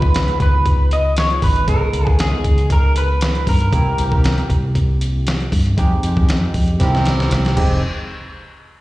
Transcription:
Already playing: C#2 G#3 B3 C#4 D#4 F4 B4
0.02 kick
0.14 C#2, snare, closed hi-hat
0.28 closed hi-hat
0.40 C#2 B4, kick, closed hi-hat
0.66 kick, closed hi-hat
0.91 D#5, closed hi-hat
1.17 C#5, snare, closed hi-hat
1.30 closed hi-hat
1.42 G#1 B4, kick, open hi-hat
1.56 closed hi-hat
1.68 C#2 G#3 B3 C#4 D#4 G#4 A#4, kick, closed hi-hat
1.93 C#2 B3 C#4 F4, closed hi-hat
2.07 kick
2.19 C#2 G#4, snare, closed hi-hat
2.44 C#2, kick, closed hi-hat
2.58 closed hi-hat
2.70 A#4, kick, closed hi-hat
2.96 B4, closed hi-hat
3.21 snare, closed hi-hat
3.35 closed hi-hat
3.47 G2 A#4, kick, open hi-hat
3.61 closed hi-hat
3.72 C2 A#3 C4 E4 G4, kick, closed hi-hat
3.98 C2 A#3 C4 G4, closed hi-hat
4.12 kick
4.24 C2, snare, closed hi-hat
4.38 closed hi-hat
4.50 C2, kick, closed hi-hat
4.75 kick, closed hi-hat
5.01 closed hi-hat
5.27 snare, closed hi-hat
5.41 closed hi-hat
5.52 G2, kick, open hi-hat
5.66 closed hi-hat
5.77 F2 G#3 C4 D#4 G4, kick, closed hi-hat
6.03 F2 G#3 D#4 G4, closed hi-hat
6.17 kick
6.28 F2, snare, closed hi-hat
6.54 F2, kick, open hi-hat
6.68 closed hi-hat
6.79 C2 A#3 C4 E4 G4 A#4, kick, snare, closed hi-hat
6.95 snare
7.05 snare, closed hi-hat
7.20 snare
7.31 C2, snare, closed hi-hat
7.45 snare, closed hi-hat
7.56 F1 G#3 C4 D#4 G4, kick, crash

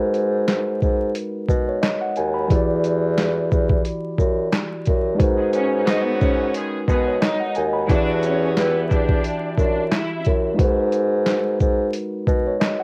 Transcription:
Already playing: G#2 G#3 D#4 F#4 A#4 B4
0.14 closed hi-hat, shaker
0.48 snare, clap, closed hi-hat
0.82 G#2, kick, shaker
1.15 closed hi-hat
1.49 B2, kick, shaker
1.69 C#5
1.82 D#5, snare, clap, closed hi-hat
2.01 F#5
2.16 D#2 G#5, closed hi-hat, shaker
2.34 B5
2.48 E2 E3 E4 F#4, kick, closed hi-hat
2.53 G4 D5
2.84 closed hi-hat, shaker
3.18 snare, clap, closed hi-hat
3.52 E2, kick, shaker
3.69 kick
3.85 closed hi-hat
4.18 F#2, kick, shaker
4.53 snare, clap, closed hi-hat
4.86 F#2, kick, closed hi-hat, shaker
5.15 G#3 D#4 F#4
5.20 G#2 A#4 B4, kick, closed hi-hat
5.37 D#3 G#3 B3 G#4
5.53 D#3 F#3 B3 C#4 F#4 C#5, closed hi-hat, shaker
5.85 D#3 F#3 B3 D#4 F#4 D#5, snare, clap, closed hi-hat
6.04 B3 B4
6.19 G#2 C#4 C#5, kick, shaker
6.54 D#3 G#3 B3 G#4, closed hi-hat
6.88 B2 D#3 G#3 B3 G#4 B4, kick, shaker
7.08 C#5
7.21 D#4 D#5, snare, clap, closed hi-hat
7.40 F#5
7.55 D#2 G#5, closed hi-hat, shaker
7.73 B5
7.87 E2 D3 E3 F#3 B3 D4 E4 F#4 D5, kick, closed hi-hat
7.93 G4 E5
8.23 C#4 C#5, closed hi-hat, shaker
8.57 B2 E3 G3 B3 E4 B4, snare, clap, closed hi-hat
8.89 E2 E3 G3 D4 G4 D5, kick, shaker
9.09 kick
9.24 closed hi-hat
9.57 F#2 D4 D5, kick, shaker
9.91 E4 E5, snare, clap, closed hi-hat
10.25 F#2, kick, closed hi-hat, shaker
10.54 G#3 D#4 F#4
10.59 G#2 A#4 B4, kick, closed hi-hat
10.92 closed hi-hat, shaker
11.26 snare, clap, closed hi-hat
11.60 G#2, kick, shaker
11.93 closed hi-hat
12.27 B2, kick, shaker
12.47 C#5
12.60 D#5, snare, clap, closed hi-hat
12.80 F#5

